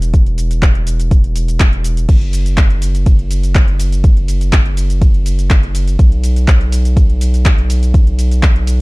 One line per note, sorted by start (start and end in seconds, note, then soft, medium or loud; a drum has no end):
0.00 2.06 E1 medium
0.00 closed hi-hat medium
0.00 shaker soft
0.14 kick loud
0.14 closed hi-hat medium
0.14 shaker soft
0.27 closed hi-hat soft
0.38 open hi-hat medium
0.38 shaker medium
0.51 closed hi-hat medium
0.51 shaker soft
0.62 kick loud
0.62 clap loud
0.62 closed hi-hat medium
0.62 shaker soft
0.75 closed hi-hat soft
0.87 open hi-hat loud
0.87 shaker medium
1.00 closed hi-hat medium
1.00 shaker soft
1.11 kick loud
1.11 closed hi-hat medium
1.11 shaker soft
1.24 closed hi-hat soft
1.36 open hi-hat loud
1.36 shaker medium
1.48 closed hi-hat medium
1.48 shaker soft
1.60 kick loud
1.60 clap loud
1.60 closed hi-hat medium
1.60 shaker soft
1.73 closed hi-hat soft
1.84 open hi-hat loud
1.84 shaker medium
1.97 closed hi-hat medium
1.97 shaker soft
2.09 5.97 F#1 medium
2.09 kick loud
2.09 closed hi-hat medium
2.09 crash medium
2.09 ride medium
2.09 shaker soft
2.22 closed hi-hat soft
2.33 open hi-hat loud
2.33 ride medium
2.33 shaker medium
2.46 closed hi-hat medium
2.46 shaker soft
2.58 kick loud
2.58 clap loud
2.58 closed hi-hat medium
2.58 ride medium
2.58 shaker soft
2.70 closed hi-hat soft
2.82 open hi-hat loud
2.82 ride medium
2.82 shaker medium
2.95 closed hi-hat medium
2.95 shaker soft
3.06 kick loud
3.06 closed hi-hat medium
3.06 ride medium
3.06 shaker soft
3.19 closed hi-hat soft
3.31 open hi-hat loud
3.31 ride medium
3.31 shaker medium
3.44 closed hi-hat medium
3.44 shaker soft
3.55 kick loud
3.55 clap loud
3.55 closed hi-hat medium
3.55 ride medium
3.55 shaker soft
3.68 closed hi-hat soft
3.80 open hi-hat loud
3.80 ride medium
3.80 shaker medium
3.93 closed hi-hat medium
3.93 shaker soft
4.04 kick loud
4.04 closed hi-hat medium
4.04 ride medium
4.04 shaker soft
4.17 closed hi-hat soft
4.28 open hi-hat loud
4.28 ride medium
4.28 shaker medium
4.41 closed hi-hat medium
4.41 shaker soft
4.53 kick loud
4.53 clap loud
4.53 closed hi-hat medium
4.53 shaker soft
4.66 closed hi-hat soft
4.77 open hi-hat loud
4.77 ride medium
4.77 shaker medium
4.90 closed hi-hat medium
4.90 shaker soft
5.02 kick loud
5.02 closed hi-hat medium
5.02 ride medium
5.02 shaker soft
5.14 closed hi-hat soft
5.26 open hi-hat loud
5.26 ride medium
5.26 shaker medium
5.39 closed hi-hat medium
5.39 shaker soft
5.50 kick loud
5.50 clap loud
5.50 closed hi-hat medium
5.50 ride medium
5.50 shaker soft
5.63 closed hi-hat soft
5.75 open hi-hat loud
5.75 ride medium
5.75 shaker medium
5.88 closed hi-hat medium
5.88 shaker soft
5.99 8.81 B1 medium
5.99 kick loud
5.99 closed hi-hat medium
5.99 ride medium
5.99 shaker soft
6.12 closed hi-hat soft
6.24 open hi-hat loud
6.24 ride medium
6.24 shaker medium
6.36 closed hi-hat medium
6.36 shaker soft
6.48 kick loud
6.48 clap loud
6.48 closed hi-hat medium
6.48 ride medium
6.48 shaker soft
6.61 closed hi-hat soft
6.72 open hi-hat loud
6.72 ride medium
6.72 shaker medium
6.85 closed hi-hat medium
6.85 shaker soft
6.97 kick loud
6.97 closed hi-hat medium
6.97 ride medium
6.97 shaker soft
7.10 closed hi-hat soft
7.21 open hi-hat loud
7.21 ride medium
7.21 shaker medium
7.34 closed hi-hat medium
7.34 shaker soft
7.45 kick loud
7.45 clap loud
7.45 closed hi-hat soft
7.45 shaker soft
7.58 closed hi-hat soft
7.70 open hi-hat loud
7.70 ride medium
7.70 shaker medium
7.83 closed hi-hat medium
7.83 shaker soft
7.94 kick loud
7.94 closed hi-hat soft
7.94 ride medium
7.94 shaker soft
8.07 closed hi-hat soft
8.19 open hi-hat loud
8.19 ride medium
8.19 shaker medium
8.31 closed hi-hat soft
8.31 shaker soft
8.43 kick loud
8.43 clap loud
8.43 closed hi-hat soft
8.43 ride medium
8.43 shaker soft
8.56 closed hi-hat soft
8.67 open hi-hat loud
8.67 ride medium
8.67 shaker medium